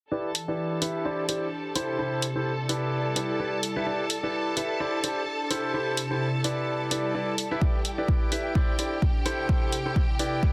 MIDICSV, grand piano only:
0, 0, Header, 1, 2, 480
1, 0, Start_track
1, 0, Tempo, 468750
1, 118, Time_signature, 4, 2, 24, 8
1, 10779, End_track
2, 0, Start_track
2, 0, Title_t, "Grand piano"
2, 0, Program_c, 0, 0
2, 118, Note_on_c, 0, 64, 77
2, 118, Note_on_c, 0, 67, 73
2, 118, Note_on_c, 0, 71, 72
2, 118, Note_on_c, 0, 74, 84
2, 289, Note_off_c, 0, 64, 0
2, 289, Note_off_c, 0, 67, 0
2, 289, Note_off_c, 0, 71, 0
2, 289, Note_off_c, 0, 74, 0
2, 493, Note_on_c, 0, 64, 71
2, 493, Note_on_c, 0, 67, 65
2, 493, Note_on_c, 0, 71, 65
2, 493, Note_on_c, 0, 74, 81
2, 812, Note_off_c, 0, 67, 0
2, 812, Note_off_c, 0, 71, 0
2, 813, Note_off_c, 0, 64, 0
2, 813, Note_off_c, 0, 74, 0
2, 837, Note_on_c, 0, 64, 80
2, 837, Note_on_c, 0, 67, 75
2, 837, Note_on_c, 0, 71, 78
2, 837, Note_on_c, 0, 76, 91
2, 1046, Note_off_c, 0, 64, 0
2, 1046, Note_off_c, 0, 67, 0
2, 1046, Note_off_c, 0, 71, 0
2, 1046, Note_off_c, 0, 76, 0
2, 1077, Note_on_c, 0, 64, 90
2, 1077, Note_on_c, 0, 67, 81
2, 1077, Note_on_c, 0, 72, 84
2, 1077, Note_on_c, 0, 74, 100
2, 1248, Note_off_c, 0, 67, 0
2, 1248, Note_off_c, 0, 72, 0
2, 1248, Note_off_c, 0, 74, 0
2, 1249, Note_off_c, 0, 64, 0
2, 1317, Note_on_c, 0, 64, 75
2, 1317, Note_on_c, 0, 67, 66
2, 1317, Note_on_c, 0, 74, 80
2, 1318, Note_on_c, 0, 72, 65
2, 1488, Note_off_c, 0, 64, 0
2, 1488, Note_off_c, 0, 67, 0
2, 1489, Note_off_c, 0, 72, 0
2, 1489, Note_off_c, 0, 74, 0
2, 1797, Note_on_c, 0, 67, 84
2, 1797, Note_on_c, 0, 72, 102
2, 1798, Note_on_c, 0, 64, 90
2, 1798, Note_on_c, 0, 69, 81
2, 2013, Note_off_c, 0, 64, 0
2, 2013, Note_off_c, 0, 67, 0
2, 2013, Note_off_c, 0, 69, 0
2, 2013, Note_off_c, 0, 72, 0
2, 2038, Note_on_c, 0, 64, 85
2, 2038, Note_on_c, 0, 67, 78
2, 2038, Note_on_c, 0, 69, 76
2, 2038, Note_on_c, 0, 72, 95
2, 2296, Note_off_c, 0, 64, 0
2, 2296, Note_off_c, 0, 69, 0
2, 2296, Note_off_c, 0, 72, 0
2, 2297, Note_off_c, 0, 67, 0
2, 2413, Note_on_c, 0, 64, 70
2, 2413, Note_on_c, 0, 67, 64
2, 2413, Note_on_c, 0, 69, 67
2, 2413, Note_on_c, 0, 72, 79
2, 2563, Note_off_c, 0, 64, 0
2, 2563, Note_off_c, 0, 67, 0
2, 2563, Note_off_c, 0, 69, 0
2, 2563, Note_off_c, 0, 72, 0
2, 2756, Note_on_c, 0, 64, 82
2, 2756, Note_on_c, 0, 67, 74
2, 2756, Note_on_c, 0, 71, 74
2, 2756, Note_on_c, 0, 74, 88
2, 3212, Note_off_c, 0, 64, 0
2, 3212, Note_off_c, 0, 67, 0
2, 3212, Note_off_c, 0, 71, 0
2, 3212, Note_off_c, 0, 74, 0
2, 3236, Note_on_c, 0, 64, 82
2, 3236, Note_on_c, 0, 67, 76
2, 3236, Note_on_c, 0, 71, 72
2, 3236, Note_on_c, 0, 74, 87
2, 3446, Note_off_c, 0, 64, 0
2, 3446, Note_off_c, 0, 67, 0
2, 3446, Note_off_c, 0, 71, 0
2, 3446, Note_off_c, 0, 74, 0
2, 3476, Note_on_c, 0, 64, 77
2, 3476, Note_on_c, 0, 67, 70
2, 3476, Note_on_c, 0, 71, 71
2, 3476, Note_on_c, 0, 74, 85
2, 3648, Note_off_c, 0, 64, 0
2, 3648, Note_off_c, 0, 67, 0
2, 3648, Note_off_c, 0, 71, 0
2, 3648, Note_off_c, 0, 74, 0
2, 3852, Note_on_c, 0, 67, 83
2, 3853, Note_on_c, 0, 64, 89
2, 3853, Note_on_c, 0, 71, 82
2, 3853, Note_on_c, 0, 76, 100
2, 3941, Note_off_c, 0, 64, 0
2, 3941, Note_off_c, 0, 67, 0
2, 3942, Note_off_c, 0, 71, 0
2, 3942, Note_off_c, 0, 76, 0
2, 3957, Note_on_c, 0, 64, 81
2, 3957, Note_on_c, 0, 67, 75
2, 3957, Note_on_c, 0, 71, 73
2, 3957, Note_on_c, 0, 74, 92
2, 4128, Note_off_c, 0, 64, 0
2, 4128, Note_off_c, 0, 67, 0
2, 4128, Note_off_c, 0, 71, 0
2, 4128, Note_off_c, 0, 74, 0
2, 4333, Note_on_c, 0, 67, 66
2, 4334, Note_on_c, 0, 64, 72
2, 4334, Note_on_c, 0, 71, 67
2, 4334, Note_on_c, 0, 74, 82
2, 4653, Note_off_c, 0, 64, 0
2, 4653, Note_off_c, 0, 67, 0
2, 4653, Note_off_c, 0, 71, 0
2, 4653, Note_off_c, 0, 74, 0
2, 4677, Note_on_c, 0, 67, 77
2, 4677, Note_on_c, 0, 71, 75
2, 4677, Note_on_c, 0, 76, 92
2, 4678, Note_on_c, 0, 64, 82
2, 4886, Note_off_c, 0, 67, 0
2, 4886, Note_off_c, 0, 71, 0
2, 4886, Note_off_c, 0, 76, 0
2, 4887, Note_off_c, 0, 64, 0
2, 4917, Note_on_c, 0, 64, 95
2, 4917, Note_on_c, 0, 67, 83
2, 4917, Note_on_c, 0, 72, 83
2, 4917, Note_on_c, 0, 74, 100
2, 5088, Note_off_c, 0, 64, 0
2, 5088, Note_off_c, 0, 72, 0
2, 5088, Note_off_c, 0, 74, 0
2, 5089, Note_off_c, 0, 67, 0
2, 5157, Note_on_c, 0, 64, 75
2, 5157, Note_on_c, 0, 67, 70
2, 5157, Note_on_c, 0, 72, 68
2, 5157, Note_on_c, 0, 74, 81
2, 5328, Note_off_c, 0, 64, 0
2, 5328, Note_off_c, 0, 72, 0
2, 5328, Note_off_c, 0, 74, 0
2, 5329, Note_off_c, 0, 67, 0
2, 5637, Note_on_c, 0, 64, 91
2, 5637, Note_on_c, 0, 67, 82
2, 5637, Note_on_c, 0, 69, 83
2, 5637, Note_on_c, 0, 72, 99
2, 5852, Note_off_c, 0, 64, 0
2, 5852, Note_off_c, 0, 69, 0
2, 5852, Note_off_c, 0, 72, 0
2, 5853, Note_off_c, 0, 67, 0
2, 5877, Note_on_c, 0, 64, 87
2, 5877, Note_on_c, 0, 69, 81
2, 5877, Note_on_c, 0, 72, 94
2, 5878, Note_on_c, 0, 67, 80
2, 6136, Note_off_c, 0, 64, 0
2, 6136, Note_off_c, 0, 67, 0
2, 6136, Note_off_c, 0, 69, 0
2, 6136, Note_off_c, 0, 72, 0
2, 6253, Note_on_c, 0, 67, 65
2, 6253, Note_on_c, 0, 69, 68
2, 6254, Note_on_c, 0, 64, 71
2, 6254, Note_on_c, 0, 72, 79
2, 6403, Note_off_c, 0, 64, 0
2, 6403, Note_off_c, 0, 67, 0
2, 6403, Note_off_c, 0, 69, 0
2, 6403, Note_off_c, 0, 72, 0
2, 6598, Note_on_c, 0, 64, 81
2, 6598, Note_on_c, 0, 67, 73
2, 6598, Note_on_c, 0, 71, 75
2, 6598, Note_on_c, 0, 74, 90
2, 7053, Note_off_c, 0, 64, 0
2, 7053, Note_off_c, 0, 67, 0
2, 7053, Note_off_c, 0, 71, 0
2, 7053, Note_off_c, 0, 74, 0
2, 7078, Note_on_c, 0, 64, 80
2, 7078, Note_on_c, 0, 67, 73
2, 7078, Note_on_c, 0, 71, 74
2, 7078, Note_on_c, 0, 74, 89
2, 7287, Note_off_c, 0, 64, 0
2, 7287, Note_off_c, 0, 67, 0
2, 7287, Note_off_c, 0, 71, 0
2, 7287, Note_off_c, 0, 74, 0
2, 7318, Note_on_c, 0, 67, 68
2, 7318, Note_on_c, 0, 71, 67
2, 7319, Note_on_c, 0, 64, 77
2, 7319, Note_on_c, 0, 74, 86
2, 7489, Note_off_c, 0, 64, 0
2, 7489, Note_off_c, 0, 67, 0
2, 7489, Note_off_c, 0, 71, 0
2, 7489, Note_off_c, 0, 74, 0
2, 7694, Note_on_c, 0, 64, 93
2, 7694, Note_on_c, 0, 67, 82
2, 7694, Note_on_c, 0, 71, 81
2, 7694, Note_on_c, 0, 76, 101
2, 7782, Note_off_c, 0, 64, 0
2, 7782, Note_off_c, 0, 67, 0
2, 7782, Note_off_c, 0, 71, 0
2, 7782, Note_off_c, 0, 76, 0
2, 7798, Note_on_c, 0, 64, 80
2, 7798, Note_on_c, 0, 67, 71
2, 7798, Note_on_c, 0, 74, 86
2, 7969, Note_off_c, 0, 64, 0
2, 7969, Note_off_c, 0, 67, 0
2, 7969, Note_off_c, 0, 74, 0
2, 8173, Note_on_c, 0, 64, 72
2, 8173, Note_on_c, 0, 67, 67
2, 8173, Note_on_c, 0, 71, 68
2, 8174, Note_on_c, 0, 74, 80
2, 8492, Note_off_c, 0, 64, 0
2, 8492, Note_off_c, 0, 71, 0
2, 8493, Note_off_c, 0, 67, 0
2, 8493, Note_off_c, 0, 74, 0
2, 8517, Note_on_c, 0, 67, 78
2, 8517, Note_on_c, 0, 71, 76
2, 8518, Note_on_c, 0, 64, 83
2, 8518, Note_on_c, 0, 76, 90
2, 8726, Note_off_c, 0, 64, 0
2, 8726, Note_off_c, 0, 67, 0
2, 8726, Note_off_c, 0, 71, 0
2, 8727, Note_off_c, 0, 76, 0
2, 8758, Note_on_c, 0, 64, 92
2, 8758, Note_on_c, 0, 67, 85
2, 8758, Note_on_c, 0, 72, 82
2, 8758, Note_on_c, 0, 74, 101
2, 8929, Note_off_c, 0, 64, 0
2, 8929, Note_off_c, 0, 67, 0
2, 8929, Note_off_c, 0, 72, 0
2, 8929, Note_off_c, 0, 74, 0
2, 8997, Note_on_c, 0, 72, 69
2, 8997, Note_on_c, 0, 74, 85
2, 8998, Note_on_c, 0, 64, 74
2, 8998, Note_on_c, 0, 67, 69
2, 9169, Note_off_c, 0, 64, 0
2, 9169, Note_off_c, 0, 67, 0
2, 9169, Note_off_c, 0, 72, 0
2, 9169, Note_off_c, 0, 74, 0
2, 9478, Note_on_c, 0, 64, 92
2, 9478, Note_on_c, 0, 67, 86
2, 9478, Note_on_c, 0, 72, 101
2, 9479, Note_on_c, 0, 69, 85
2, 9693, Note_off_c, 0, 64, 0
2, 9693, Note_off_c, 0, 67, 0
2, 9693, Note_off_c, 0, 69, 0
2, 9693, Note_off_c, 0, 72, 0
2, 9717, Note_on_c, 0, 72, 98
2, 9718, Note_on_c, 0, 64, 89
2, 9718, Note_on_c, 0, 67, 80
2, 9718, Note_on_c, 0, 69, 81
2, 9976, Note_off_c, 0, 64, 0
2, 9976, Note_off_c, 0, 72, 0
2, 9977, Note_off_c, 0, 67, 0
2, 9977, Note_off_c, 0, 69, 0
2, 10093, Note_on_c, 0, 67, 66
2, 10094, Note_on_c, 0, 64, 73
2, 10094, Note_on_c, 0, 69, 68
2, 10094, Note_on_c, 0, 72, 79
2, 10243, Note_off_c, 0, 64, 0
2, 10243, Note_off_c, 0, 67, 0
2, 10243, Note_off_c, 0, 72, 0
2, 10244, Note_off_c, 0, 69, 0
2, 10437, Note_on_c, 0, 67, 77
2, 10438, Note_on_c, 0, 64, 83
2, 10438, Note_on_c, 0, 71, 75
2, 10438, Note_on_c, 0, 74, 92
2, 10779, Note_off_c, 0, 64, 0
2, 10779, Note_off_c, 0, 67, 0
2, 10779, Note_off_c, 0, 71, 0
2, 10779, Note_off_c, 0, 74, 0
2, 10779, End_track
0, 0, End_of_file